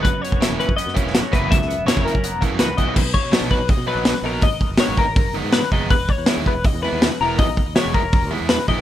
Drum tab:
CC |----------------|----------------|x---------------|----------------|
HH |x-x-x-x-x-x-x-x-|x-x-x-x-x-x-x-x-|----o---o---o---|o---o---o---o---|
SD |----o----o-oo---|-o--o-------o---|----o-------oo--|----o-------oo--|
BD |o--o---o--o---o-|o----o-o--o---o-|o-o---o-o-------|o-o---o-o-----o-|

CC |----------------|----------------|
HH |o---o---o---o---|o---o---o---o---|
SD |----o-------oo--|----o-------oo--|
BD |o-o---o-o-------|o-o---o-o-----o-|